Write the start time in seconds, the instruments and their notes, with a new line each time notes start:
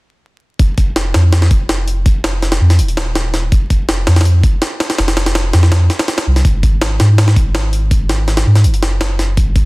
0.59 sub bass F1, kick, closed hi-hat
0.78 kick, closed hi-hat
0.96 snare, closed hi-hat
1.14 sub bass F2, snare, closed hi-hat
1.33 snare, closed hi-hat
1.42 snare
1.51 sub bass F1, kick, closed hi-hat
1.69 snare, closed hi-hat
1.88 closed hi-hat
2.06 sub bass F1, kick, closed hi-hat
2.24 snare, closed hi-hat
2.42 snare, closed hi-hat
2.52 snare, closed hi-hat
2.61 sub bass F2
2.70 snare, closed hi-hat
2.79 sub bass D#1, closed hi-hat
2.88 closed hi-hat
2.97 snare, closed hi-hat
3.15 snare, closed hi-hat
3.34 snare, closed hi-hat
3.52 sub bass F1, kick, closed hi-hat
3.70 kick, closed hi-hat
3.89 snare, closed hi-hat
4.07 sub bass F2, snare, closed hi-hat
4.16 snare, closed hi-hat
4.21 snare, closed hi-hat
4.25 closed hi-hat
4.44 kick, closed hi-hat
4.62 snare, closed hi-hat
4.80 snare, closed hi-hat
4.90 snare, closed hi-hat
4.98 sub bass F1, snare, closed hi-hat
5.08 snare, closed hi-hat
5.17 snare, closed hi-hat
5.26 snare, closed hi-hat
5.35 snare, closed hi-hat
5.53 sub bass F2, snare, closed hi-hat
5.63 snare
5.72 snare, closed hi-hat
5.90 snare, closed hi-hat
5.99 snare, closed hi-hat
6.08 snare, closed hi-hat
6.18 snare, closed hi-hat
6.27 sub bass C2
6.36 snare, closed hi-hat
6.45 sub bass G#1, kick, closed hi-hat
6.63 kick, closed hi-hat
6.81 snare, closed hi-hat
7.00 sub bass G#2, snare, closed hi-hat
7.18 snare, closed hi-hat
7.28 snare
7.36 sub bass G#1, kick, closed hi-hat
7.55 snare, closed hi-hat
7.73 closed hi-hat
7.91 sub bass G#1, kick, closed hi-hat
8.09 snare, closed hi-hat
8.28 snare, closed hi-hat
8.37 snare, closed hi-hat
8.46 sub bass G#2
8.55 snare, closed hi-hat
8.64 sub bass F#1, closed hi-hat
8.74 closed hi-hat
8.82 snare, closed hi-hat
9.01 snare, closed hi-hat
9.19 snare, closed hi-hat
9.37 sub bass G#1, kick, closed hi-hat
9.56 kick, closed hi-hat